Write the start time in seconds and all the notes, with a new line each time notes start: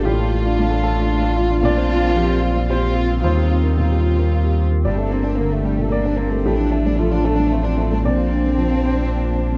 Already playing: D5
0.04 A1 A2 A3 F4 G4
0.19 A4
0.32 F4
0.45 D4
0.58 A3 D4
0.71 A4
0.83 F4 A4
0.97 D4
1.10 D4
1.23 A4
1.36 F4
1.50 D4
1.63 A#1 A#2 C4 D4 F4 C5 D5
1.77 C5
1.90 F4
2.03 C4
2.16 F3 G4
2.30 C5
2.43 F4
2.56 C4
2.68 C4 F4 G4 C5
2.83 C5
2.96 F4
3.10 C4
3.22 D#2 G3 D#4 F4 G4 C5
3.37 G4
3.50 F4
3.63 A#3
3.76 A#2 G3 F4 A#4
3.91 G4
4.05 F4
4.19 A#3
4.45 G4
4.58 F4
4.72 A#3
4.85 G1 G2 G3 A3 D4 G4 A4 D5
4.98 A3 A4
5.10 A#3 C4 D4
5.24 A#3 D4
5.37 D3 A#3
5.51 A3 A4
5.64 G3 A3 D4
5.77 A#2 A3
5.90 A#3 D5
6.04 D4 A4
6.16 A#3 C4 D4
6.31 A3 A#3
6.43 A1 A2 F3 A3 D4 G4
6.47 D4 F4
6.57 D4 F4
6.71 A3 D4
6.85 A3 D4
6.98 F3 A3 F4
7.11 D4 F4
7.24 A3 D4 A4
7.36 A3 D4
7.50 A3 C4
7.63 D4 F4
7.78 A3 D4
7.92 A3 D4
8.04 A#1 A#2 F3 A#3 C4 D5
8.17 F4
8.31 D4
8.44 C4
8.58 F3 D4
8.70 F4
8.84 D4 C5
8.97 C4
9.23 F4
9.36 D4
9.50 C4